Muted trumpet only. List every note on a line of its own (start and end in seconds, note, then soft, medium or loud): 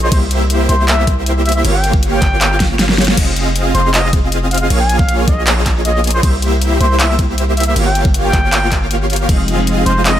0.02 0.08 C5 medium
0.12 0.18 C5 medium
0.69 0.86 C5 loud
0.88 1.05 E5 loud
1.45 1.52 E5 medium
1.55 1.61 E5 medium
1.74 1.91 G5 medium
2.12 2.66 G5 loud
3.75 3.92 C5 loud
3.94 4.11 D#5 loud
4.51 4.58 F5 medium
4.61 4.67 F5 medium
4.80 4.97 G#5 medium
4.99 5.16 F5 loud
5.28 5.44 D#5 loud
5.85 6.02 D#5 medium
6.14 6.20 C5 medium
6.23 6.29 C5 medium
6.81 6.97 C5 loud
7.00 7.17 E5 medium
7.57 7.63 E5 medium
7.67 7.73 E5 medium
7.86 8.02 G5 medium
8.24 8.77 G5 loud
9.86 10.03 C5 loud
10.05 10.20 D#5 loud